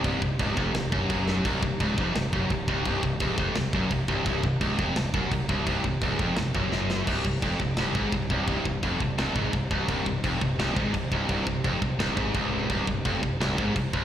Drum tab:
CC |x-x-x-x-|x-x-x-x-|x-x-x-x-|x-x-x-x-|
SD |----o--o|----o---|----o---|----o---|
BD |oooo-oo-|oooo-ooo|oooo-ooo|oooo-ooo|

CC |x-x-x---|x-x-x-x-|x-x-x-x-|x-x-x-x-|
SD |----o-oo|----o---|----o---|----o---|
BD |oooo-o--|oooo-ooo|oooo-ooo|oooo-ooo|

CC |x-x-x-x-|x-x-x-x-|
SD |----o---|----o---|
BD |oooo-oo-|oooo-ooo|